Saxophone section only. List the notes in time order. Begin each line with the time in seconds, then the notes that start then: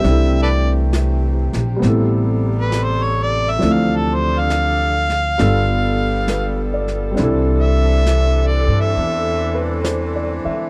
Already playing: G4
0.04 C3 E3 A3
1.81 G3 A4
3.60 D3 D4 A4
5.39 G3 B3 F4 A4
7.17 E3 C4 D4